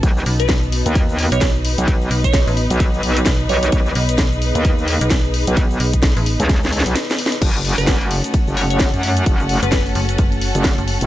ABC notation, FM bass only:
X:1
M:4/4
L:1/16
Q:"Swing 16ths" 1/4=130
K:F#dor
V:1 name="FM bass" clef=bass
z2 B,,,2 B,,,3 z4 B,,,4 z | z2 B,,,3 A,,,2 z4 z B,,,2 z2 | z2 B,,,2 B,,,3 z4 B,,,4 z | z2 B,,,3 A,,,2 z8 z |
z16 | z3 F,,,3 F,,,2 F,,,3 z2 F,,,2 z |]